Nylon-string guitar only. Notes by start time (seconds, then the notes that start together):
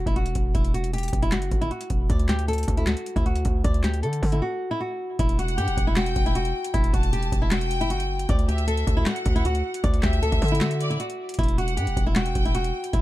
0.07 E4
0.16 F#4
0.54 E4
0.74 F#4
0.93 G4
1.22 E4
1.32 F#4
1.61 E4
1.71 F#4
2.10 D5
2.29 G4
2.48 A4
2.77 E4
2.87 F#4
3.16 E4
3.26 F#4
3.64 D5
3.84 G4
4.03 A4
4.32 E4
4.42 F#4
4.71 E4
4.80 F#4
5.19 E4
5.39 F#4
5.58 G4
5.87 E4
5.97 F#4
6.26 E4
6.35 F#4
6.74 E4
6.93 F#4
7.13 G4
7.42 E4
7.52 F#4
7.81 E4
7.90 F#4
8.30 D5
8.48 G4
8.67 A4
8.97 E4
9.07 F#4
9.36 E4
9.45 F#4
9.84 D5
10.03 G4
10.22 A4
10.52 E4
10.61 F#4
10.90 E4
11.00 F#4
11.39 E4
11.58 F#4
11.77 G4
12.07 E4
12.16 F#4
12.45 E4
12.55 F#4
12.93 E4